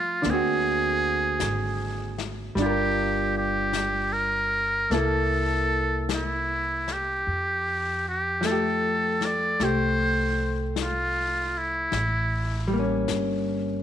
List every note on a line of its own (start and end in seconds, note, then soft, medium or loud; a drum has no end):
0.00 0.22 F3 soft
0.00 0.24 A3 soft
0.00 0.32 F4 medium
0.00 0.25 G4 soft
0.22 1.36 D2 medium
0.22 2.55 D3 soft
0.22 2.55 A#3 soft
0.22 brush sweep soft
0.22 snare soft
0.30 2.58 C4 soft
0.30 2.61 F#4 soft
0.30 2.20 G#4 medium
1.40 2.52 G#1 medium
1.40 brush sweep soft
1.40 snare soft
1.40 hi-hat pedal medium
2.18 snare soft
2.55 4.85 G1 medium
2.55 4.89 G3 soft
2.55 4.91 D4 soft
2.55 brush sweep soft
2.55 snare soft
2.62 4.92 F4 medium
2.62 3.32 G4 medium
2.62 4.93 A#4 soft
3.37 4.14 G4 medium
3.73 brush sweep soft
3.73 snare soft
3.73 hi-hat pedal soft
4.13 4.94 A#4 medium
4.90 7.22 C2 medium
4.90 7.26 A#3 soft
4.90 7.27 E4 soft
4.90 6.09 A4 medium
4.90 7.27 A4 soft
4.90 brush sweep soft
4.90 snare soft
6.09 brush sweep soft
6.09 snare soft
6.09 hi-hat pedal soft
6.14 6.94 E4 medium
6.88 snare soft
6.92 8.06 G4 medium
7.27 9.56 F2 medium
7.27 brush sweep soft
8.09 8.48 G4 medium
8.41 11.91 F3 soft
8.41 9.59 A3 soft
8.41 brush sweep soft
8.41 snare soft
8.41 hi-hat pedal soft
8.47 9.27 A4 medium
8.52 9.62 G4 soft
9.21 snare soft
9.25 9.66 D5 medium
9.60 11.88 C2 medium
9.60 11.92 A3 soft
9.60 11.93 G4 soft
9.60 brush sweep soft
9.60 snare soft
9.64 10.60 C5 medium
10.76 brush sweep soft
10.76 snare soft
10.76 hi-hat pedal soft
10.82 11.59 F4 medium
11.58 12.71 E4 medium
11.92 13.04 A1 medium
11.92 brush sweep soft
11.92 snare soft
12.68 13.83 G3 soft
12.73 13.83 A#3 soft
12.79 13.83 C#4 soft
13.08 13.83 G1 medium
13.08 brush sweep soft
13.08 snare soft
13.08 hi-hat pedal soft